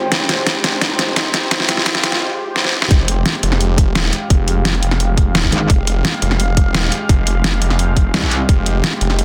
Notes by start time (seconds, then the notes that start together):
Already playing: G#1 G#3 F4 G4 C5 G5, riser
0.12 F1, kick, snare, closed hi-hat
0.29 snare, closed hi-hat
0.47 kick, snare, closed hi-hat
0.64 F1, snare, closed hi-hat
0.81 kick, snare, closed hi-hat
0.99 snare, closed hi-hat
1.16 D#1, kick, snare, closed hi-hat
1.34 snare, closed hi-hat
1.51 F1, kick, snare, closed hi-hat
1.60 snare
1.69 snare, closed hi-hat
1.77 snare
1.86 kick, snare, closed hi-hat
1.95 snare
2.03 F1, snare, closed hi-hat
2.12 snare
2.56 snare
2.65 snare
2.82 snare
2.91 F1 G#3 G4 F5, kick, closed hi-hat
3.08 closed hi-hat
3.26 snare, closed hi-hat
3.34 snare
3.43 F1, closed hi-hat
3.52 snare
3.61 closed hi-hat
3.78 kick, closed hi-hat
3.95 D#1, snare, closed hi-hat
4.13 closed hi-hat
4.30 F1, kick, closed hi-hat
4.48 closed hi-hat
4.65 snare, closed hi-hat
4.74 snare
4.82 F1, closed hi-hat
4.91 snare
5.00 closed hi-hat
5.17 kick, closed hi-hat
5.35 D#1, snare, closed hi-hat
5.44 kick
5.52 G#1, closed hi-hat
5.70 F1, kick, closed hi-hat
5.87 closed hi-hat
6.05 snare, closed hi-hat
6.13 snare
6.22 F1, closed hi-hat
6.31 snare
6.40 closed hi-hat
6.57 kick, closed hi-hat
6.74 D#1, snare, closed hi-hat
6.92 closed hi-hat
7.09 F1, kick, closed hi-hat
7.27 closed hi-hat
7.44 snare, closed hi-hat
7.53 snare
7.62 F1, closed hi-hat
7.70 snare
7.79 closed hi-hat
7.96 kick, closed hi-hat
8.14 C2, snare, closed hi-hat
8.23 kick
8.31 closed hi-hat
8.49 F1 G5, kick, closed hi-hat
8.66 closed hi-hat
8.84 snare, closed hi-hat
8.93 snare
9.01 F1, closed hi-hat
9.10 snare
9.19 closed hi-hat